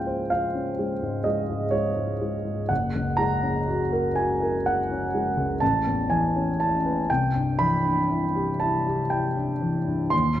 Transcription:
grand piano
Already playing: C#2 G#2 G#3 C#4 F4 C5 F5 G5 G#5
0.07 C5
0.30 F4 F5
0.55 C#4
0.79 G#3
1.02 G#2
1.24 G#3 D#5
1.49 G#2
1.71 G#3 C#5
1.96 G#2
2.21 G#3
2.45 G#2
2.69 F#1 F#5
2.95 C#2
3.17 G#3 A#5
3.43 C#4
3.68 F#4
3.93 A#4
4.16 F#4 G#5
4.42 A#4
4.66 F#4 F#5
4.91 C#4
5.15 G#3
5.37 C#2
5.60 A1 A5
5.87 E2
6.10 E3 G#5
6.36 C#4
6.60 E4 A5
6.86 B4
7.10 C2 G5
7.36 G2
7.59 E3 B5
7.85 D4
8.10 E4
8.35 G4
8.60 E4 A5
8.86 G4
9.10 E4 G5
9.36 D4
9.62 E3
9.87 G2
10.10 D#2 C6
10.36 A#2

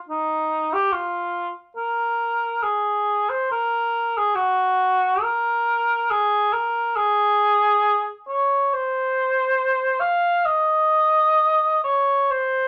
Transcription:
cor anglais
0.09 D#4
0.74 G4
0.92 F4
1.77 A#4
2.63 G#4
3.30 C5
3.52 A#4
4.17 G#4
4.35 F#4
5.22 A#4
6.11 G#4
6.53 A#4
6.97 G#4
8.28 C#5
8.73 C5
10.01 F5
10.45 D#5
11.84 C#5
12.30 C5

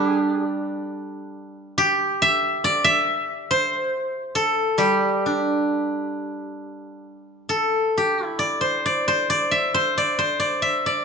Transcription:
guzheng
Already playing: G3 D4 G4 A4
0.08 G#4
0.20 G4
1.78 G4
2.22 E5
2.64 D5
2.84 E5
3.51 C5
4.35 A4
4.78 G3 G4
5.26 D4
7.49 A4
7.98 G4
8.26 E4
8.39 D5
8.61 C5
8.86 D5
9.08 C5
9.30 D5
9.51 E5
9.74 C5
9.98 D5
10.19 C5
10.40 D5
10.62 E5
10.86 D5

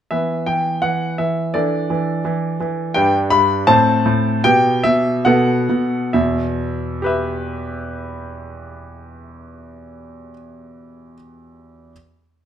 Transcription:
grand piano
0.11 E3 B3 B4 E5
0.46 E3 G5
0.82 E3 F#5
1.18 E3 E5
1.54 E3 D4 A4 D5
1.90 E3
2.25 E3
2.60 E3
2.94 G2 D4 B4 G5
3.30 G2 B5
3.67 A2 C4 C5 A5
4.06 A2
4.44 B2 B3 G4 G5
4.83 B2 E5
5.25 B2 B3 A4 F#5
5.69 B2
6.13 E2 B2 E5
7.02 G4 B4
7.06 E5

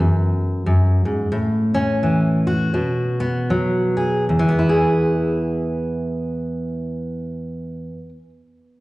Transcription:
steel-string acoustic guitar
0.00 F#2
0.66 F#2
1.05 G#2
1.32 A2
1.74 C#4
2.03 E3
2.47 F#4
2.74 B2
3.20 B3
3.50 F#3
3.97 G#4
4.29 E2
4.39 E3
4.49 B3
4.59 E4
4.69 G#4

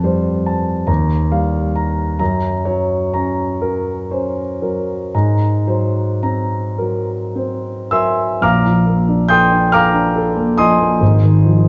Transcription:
grand piano
Already playing: F2 A5
0.04 G3 C5
0.46 A5
0.87 D#2 A#5
1.32 G3 F5
1.76 A#5
2.19 F#2 A#5
2.65 F#3 C#5
3.14 C#4 A#5
3.61 F#3 A#4
4.11 C#4 C5
4.62 F#3 A#4
5.14 G#2 A#5
5.67 F#3 C5
6.23 C4 A#5
6.78 F#3 A#4
7.36 C4 C5
7.91 F#3 A#4 E5 G#5 C6 E6
8.41 A#1 A#2 F5 A#5 D6 F6
8.65 F3
8.86 A#3
9.08 D4
9.29 A4 G5 C6 D#6 G6
9.51 D4
9.72 A4 F5 A#5 D6 F6
9.94 D4
10.16 A4
10.37 A#3
10.58 F3 D#5 G#5 C6 D#6
10.80 A#3
11.00 G#1 G#2
11.23 D#3
11.46 F3

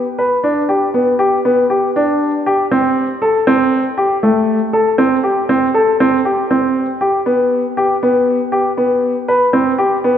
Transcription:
grand piano
0.19 B4
0.44 D4
0.69 G4
0.94 B3
1.19 G4
1.45 B3
1.70 G4
1.96 D4
2.46 G4
2.71 C4
3.22 A4
3.47 C4
3.98 G4
4.23 A3
4.73 A4
4.98 C4
5.23 G4
5.49 C4
5.74 A4
6.00 C4
6.25 G4
6.51 C4
7.01 G4
7.26 B3
7.77 G4
8.03 B3
8.52 G4
8.78 B3
9.28 B4
9.53 C4
9.78 G4
10.04 B3

